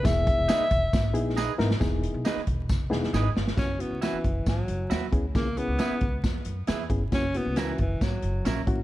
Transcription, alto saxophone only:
\new Staff \with { instrumentName = "Alto saxophone" } { \time 4/4 \key fis \mixolydian \tempo 4 = 136 e''2. r4 | r1 | cis'8 b8 e4 fis4. r8 | ais8 b4. r2 |
cis'8 b8 e8 e8 fis4. r8 | }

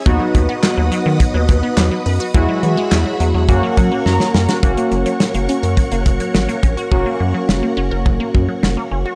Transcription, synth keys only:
\new Staff \with { instrumentName = "Synth keys" } { \time 4/4 \key fis \mixolydian \tempo 4 = 105 << { r1 | r2 r8 fis''8 ais''4 | r1 | r1 | } \\ { <b dis' fis'>1 | <gis e' fis'>2 <ais cis' fis'>2 | <ais cis' fis'>1 | <ais cis' fis'>1 | } >> }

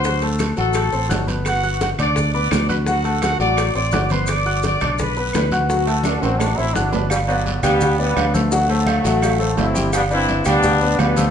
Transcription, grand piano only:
\new Staff \with { instrumentName = "Grand piano" } { \time 4/4 \key g \major \tempo 4 = 170 <fis fis' fis''>8 <a a' a''>4 <fis fis' fis''>4 <c' c'' c'''>8 <fis' fis'' fis'''>8 <b b' b''>8~ | <b b' b''>8 <fis' fis'' fis'''>4 <d' d'' d'''>4 <b b' b''>4 <fis' fis'' fis'''>8 | <fis fis' fis''>8 <a a' a''>4 <fis fis' fis''>4 <c' c'' c'''>8 <fis' fis'' fis'''>8 <b b' b''>8~ | <b b' b''>8 <fis' fis'' fis'''>4 <d' d'' d'''>4 <b b' b''>4 <fis' fis'' fis'''>8 |
<fis fis' fis''>8 <a a' a''>4 <fis fis' fis''>4 <c' c'' c'''>8 <fis' fis'' fis'''>8 <b b' b''>8 | r8 <b b' d''>4 <g g' g''>4 <b b' d''>4 <a a' c''>8 | <fis fis' fis''>8 <a a' c''>4 <fis fis' fis''>4 <a a' c''>4 <g g' g''>8~ | <g g' g''>8 <d' b' d''>4 <g g' g''>4 <b b' d''>4 <a a' c''>8 | }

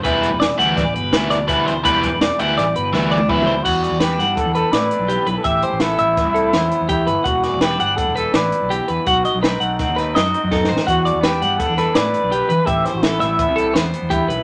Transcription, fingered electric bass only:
\new Staff \with { instrumentName = "Fingered electric bass" } { \clef bass \time 5/4 \key e \minor \tempo 4 = 166 e,,8. e,,16 e,,16 r16 d,8 a,,8 g,,8 d,2 | e,,8. e,,16 e,,16 r16 d,8 a,,8 g,,8 d,2 | e,8. e,8. g,8 r16 e,8 r16 a,8 r16 b,,8 r16 b,,16 r16 | a,,8 r16 a,,8. a,,8. c,8. e,8 r16 e,8. g,,16 r16 |
e,,8. e,,8. g,,8 r16 e,,8 r16 a,,8 r16 b,,8 r16 e,16 r16 | b,,8 r16 b,,8. b,,8. dis,8. fis,8 r16 fis,8. a,,16 r16 | e,8. e,8. g,8 r16 e,8 r16 a,8 r16 b,,8 r16 e16 r16 | a,,8 r16 a,,8. a,,8. c,8. e,8 r16 e,8. b,,16 r16 | }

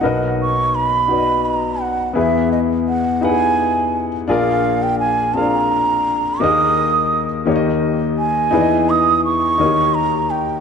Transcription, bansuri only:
\new Staff \with { instrumentName = "Bansuri" } { \time 6/8 \key b \major \tempo 4. = 57 fis''8 cis'''8 b''4 ais''8 fis''8 | e''8 dis''8 fis''8 gis''4 r8 | eis''8. g''16 gis''8 ais''4. | dis'''4 r4. gis''8~ |
gis''8 dis'''8 cis'''4 ais''8 g''8 | }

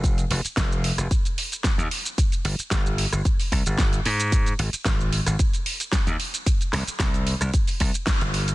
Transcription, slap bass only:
\new Staff \with { instrumentName = "Slap bass" } { \clef bass \time 4/4 \key c \phrygian \tempo 4 = 112 f,,16 r16 f,,16 r16 f,,8 r16 f,,16 r4 r16 ees,16 r8 | r8 g,,16 r16 g,,8 r16 g,,16 r8 c,16 g,,8 r16 aes,8~ | aes,16 r16 aes,,16 r16 aes,,8 r16 aes,,16 r4 r16 ees,16 r8 | r8 c,16 r16 c,8 r16 c,16 r8 c,16 r8 g,,8 r16 | }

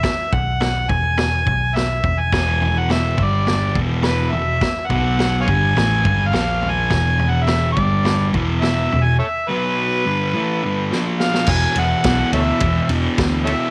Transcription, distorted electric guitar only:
\new Staff \with { instrumentName = "Distorted electric guitar" } { \clef bass \time 4/4 \key b \mixolydian \tempo 4 = 105 r1 | <e, b, e>4. <g, d g>4 <e, b, e>4 <e, b,>8 | r8 <b, fis b>4 <g, d g>8 <a, e a>8 <g, d g>8 <ais, eis ais>4 | <e, b, e>4. <g, d g>4 <e, b, e>4 <e, b,>8 |
r8 <b, fis b>4 <g, d g>8 <a, e a>8 <g, d g>8 <ais, eis ais>4 | \key e \mixolydian <e, b, e>8 <e, b, e>8 <e, b, e>8 <e, b, e>8 <e, b, e>8 <e, b, e>8 <e, b, e>8 <e, b, e>8 | }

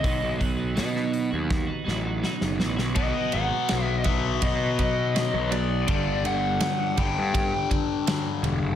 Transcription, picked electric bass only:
\new Staff \with { instrumentName = "Picked electric bass" } { \clef bass \time 4/4 \key b \minor \tempo 4 = 82 b,,16 b,,8. b,8. dis,8 r16 a,,8 r16 fis,,16 a,,16 b,,16 | \key b \dorian b,,16 r16 gis,,16 r16 b,,4 b,4~ b,16 b,,8. | g,,8 g,,8 r8 g,,16 g,8 r4 r16 e,,16 fis,,16 | }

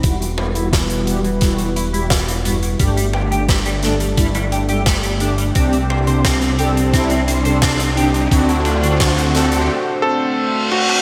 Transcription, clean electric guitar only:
\new Staff \with { instrumentName = "Clean electric guitar" } { \time 4/4 \key e \minor \tempo 4 = 87 e16 e16 e'16 e'16 e16 e16 b16 e16 e16 e16 e'16 e'16 e16 e16 b16 e16 | g16 g16 g'16 g'16 g16 g16 d'16 g16 g16 g16 g'16 g'16 g16 g16 d'16 g16 | c'16 c'16 c''16 c''16 c'16 c'16 g'16 c'16 c'16 c'16 c''16 c''16 c'16 c'16 g'16 c'16 | d16 d16 d'16 d'16 d16 d16 a16 d16 r2 | }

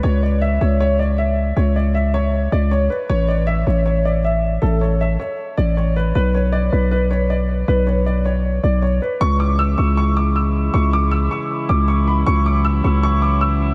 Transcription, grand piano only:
\new Staff \with { instrumentName = "Grand piano" } { \time 4/4 \key cis \phrygian \tempo 4 = 157 cis''8 d''8 e''8 cis''8 cis''8 d''8 e''4 | cis''8 d''8 e''8 cis''4 d''8 cis''8 b'8 | cis''8 d''8 e''8 cis''8 cis''8 d''8 e''4 | a'8 cis''8 e''8 cis''4 d''8 cis''8 b'8 |
b'8 cis''8 d''8 b'8 b'8 cis''8 d''4 | b'8 cis''8 d''8 cis''4 d''8 cis''8 b'8 | cis'''8 d'''8 e'''8 cis'''8 cis'''8 d'''8 e'''4 | cis'''8 d'''8 e'''8 cis'''4 d'''8 cis'''8 b''8 |
cis'''8 d'''8 e'''8 cis'''8 cis'''8 d'''8 e'''4 | }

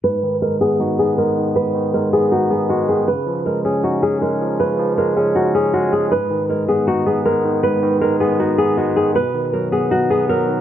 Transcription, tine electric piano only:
\new Staff \with { instrumentName = "Tine electric piano" } { \clef bass \time 4/4 \key gis \dorian \tempo 4 = 158 gis,8 dis8 gis8 b8 dis'8 b8 gis8 dis8 | gis,8 dis8 gis8 b8 dis'8 b8 gis8 dis8 | cis8 eis8 gis8 cis'8 dis'8 cis'8 gis8 eis8 | cis8 eis8 gis8 cis'8 dis'8 cis'8 gis8 eis8 |
gis,8 dis8 gis8 b8 dis'8 b8 gis8 dis8 | gis,8 dis8 gis8 b8 dis'8 b8 gis8 dis8 | b,8 dis8 fis8 b8 dis'8 b8 fis8 dis8 | }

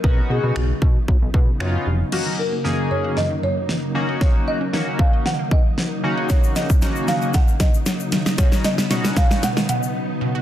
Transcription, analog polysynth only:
\new Staff \with { instrumentName = "Analog polysynth" } { \time 4/4 \key fis \major \tempo 4 = 115 <b cis' dis' fis'>4 r2 <b cis' dis' eis'>8 r8 | <ais cis' dis' fis'>8 r8 <ais cis' dis' gis'>4 r4. <ais cis' dis' fis'>8~ | <ais cis' dis' fis'>8 r8 <ais cis' dis' fis'>4 r4. <cis ais cis' dis' fis'>8~ | <cis ais cis' dis' fis'>8 r8 <cis ais cis' dis' fis'>4 r2 |
<b cis' dis' fis'>8 r8 <b cis' dis' fis'>4 r2 | }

